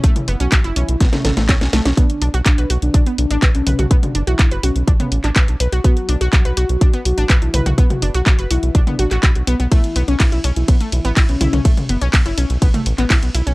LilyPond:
<<
  \new Staff \with { instrumentName = "Soft synth lead" } { \time 4/4 \key b \minor \tempo 4 = 124 r16 e'16 r16 fis'8 r16 e'8 r16 cis'8 r4 r16 | d'8 r8 d'8 r16 d'8 r16 d'8 r16 cis'8 r16 | r16 d'16 r16 e'8 r16 cis'8 r16 cis'8 r4 r16 | fis'8 r8 fis'8 r16 fis'8 r16 fis'8 r16 e'8 r16 |
r16 fis'16 r16 fis'8 r16 e'8 r16 d'8 r4 r16 | e'8 r8 e'8 r16 e'8 r16 e'8 r16 cis'8 r16 | r1 | }
  \new Staff \with { instrumentName = "Synth arpeggio sound" } { \time 4/4 \key b \minor a16 r16 b16 cis'16 r16 e'16 cis'16 r16 b16 a16 a'16 a16 cis'16 cis'16 a16 cis'16 | b16 r16 d'16 fis'16 r16 b'16 fis'16 r16 d'16 b16 r16 d'16 b'16 r16 b'16 fis'16 | b16 r16 d'16 fis'16 r16 b'16 fis'16 r16 d'16 b16 r16 d'16 b'16 r16 b'16 fis'16 | b16 r16 d'16 fis'16 r16 b'16 fis'16 r16 d'16 b16 r16 d'16 b'16 r16 b'16 fis'16 |
b16 r16 d'16 fis'16 r16 b'16 fis'16 r16 d'16 b16 fis'16 fis'16 b''16 r16 b16 b16 | a16 r16 b16 cis'16 r16 e'16 cis'16 r16 b16 a16 r16 b16 e'16 r16 e'16 cis'16 | a16 r16 b16 cis'16 r16 e'16 cis'16 r16 b16 a16 r16 b16 e'16 r16 e'16 cis'16 | }
  \new Staff \with { instrumentName = "Analog synth bass" } { \clef bass \time 4/4 \key b \minor b,,16 r16 fis,,16 b,,16 b,,16 fis,,16 b,,16 b,,16 a,,16 r16 a,,16 a,,16 b,,16 b,,16 b,,16 b,,16 | b,,16 r16 b,,16 b,,16 b,,16 b,,16 b,,16 b,,16 b,,16 r16 b,,16 a,,16 b,,16 b,,16 b,,16 b,,16 | b,,16 r16 fis,,16 b,,16 b,,16 fis,,16 b,,16 b,,16 a,,16 r16 a,,16 a,,16 b,,16 b,,16 b,,16 b,,16 | b,,16 r16 b,,16 b,,16 b,,16 b,,16 b,,16 b,,16 b,,16 r16 b,,16 a,,16 b,,16 b,,16 b,,16 b,,16 |
b,,16 r16 fis,,16 b,,16 b,,16 fis,,16 b,,16 b,,16 a,,16 r16 a,,16 a,,16 b,,16 b,,16 b,,16 b,,16 | b,,16 r16 b,,16 b,,16 b,,16 b,,16 b,,16 b,,16 b,,16 r16 b,,16 a,,16 b,,16 b,,16 b,,16 b,,16 | b,,16 r16 fis,,16 b,,16 b,,16 fis,,16 b,,16 b,,16 a,,16 r16 a,,16 a,,16 b,,16 b,,16 b,,16 b,,16 | }
  \new DrumStaff \with { instrumentName = "Drums" } \drummode { \time 4/4 <hh bd>16 <hh toml>16 hho16 hh16 <hc hh bd>16 hh16 hho16 hh16 <hh bd sn>16 <hh sn toml>16 <hho sn toml>16 <hh sn>16 <hc hh bd sn>16 <hh sn>16 <hho sn>16 <hh sn>16 | <hh bd>16 hh16 hho16 hh16 <hc hh bd>16 hh16 hho16 hh16 <hh bd>16 hh16 hho16 hh16 <hc hh bd>16 hh16 <hho toml>16 <hh toml>16 | <hh bd>16 <hh toml>16 hho16 hh16 <hc hh bd>16 hh16 hho16 hh16 <hh bd>16 <hh toml>16 hho16 <hc hh>16 <hc hh bd>16 hh16 hho16 hh16 | <hh bd>16 hh16 hho16 hh16 <hc hh bd>16 hh16 hho16 hh16 <hh bd>16 hh16 hho16 hh16 <hc hh bd>16 hh16 <hho toml>16 <hh toml>16 |
<hh bd>16 <hh toml>16 hho16 hh16 <hc hh bd>16 hh16 hho16 hh16 <hh bd>16 <hh toml>16 hho16 <hc hh>16 <hc hh bd>16 hh16 hho16 hh16 | <hh bd cymr>16 hh16 hho16 hh16 <hc hh bd cymr>16 hh16 hho16 hh16 <hh bd cymr>16 hh16 hho16 hh16 <hc hh bd cymr>16 hh16 <hho toml>16 <hh toml>16 | <hh bd cymr>16 <hh toml>16 hho16 hh16 <hc hh bd cymr>16 hh16 hho16 hh16 <hh bd cymr>16 <hh toml>16 hho16 <hc hh>16 <hc hh bd cymr>16 hh16 hho16 hh16 | }
>>